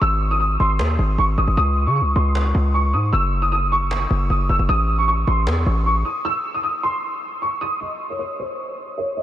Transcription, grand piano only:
0.01 E6
0.31 D#6
0.40 D#6
0.60 C6
1.19 C#6
1.38 D#6
1.57 D#6
1.87 C#6
1.96 C#6
2.16 C6
2.74 C#6
2.93 D#6
3.13 E6
3.42 D#6
3.52 D#6
3.72 C#6
4.30 D#6
4.49 E6
4.69 D#6
4.98 C#6
5.08 C#6
5.28 C6
5.86 C#6
6.05 D#6
6.25 E6
6.54 D#6
6.63 D#6
6.83 C6
7.42 C#6
7.61 D#6
7.81 D#5
8.10 C#5
8.19 C#5
8.39 C5
8.98 C#5
9.17 D#5

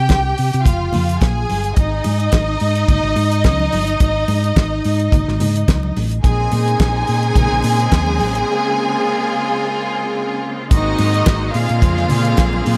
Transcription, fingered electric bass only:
0.10 C2
0.39 C3
0.54 C3
0.66 F1
0.95 F2
1.22 A#1
1.50 G1
1.77 G#1
2.06 G#2
2.33 G#1
2.61 G#2
2.89 G#1
3.03 G#1
3.16 G#2
3.45 C#2
3.72 G1
4.01 G#1
4.28 G#2
4.57 G#1
4.85 G#2
5.12 G#1
5.28 G#1
5.41 G#2
5.68 C#2
5.97 A1
6.25 A#1
6.52 A#2
6.80 A#1
7.09 A#2
7.36 A#1
7.51 A#1
7.64 A#2
7.92 D#2
8.21 A1
10.71 G#1
10.99 G#2
11.27 G#1
11.55 A#2
11.70 A#2
11.83 F2
12.11 A#2
12.38 A#1
12.67 A#2

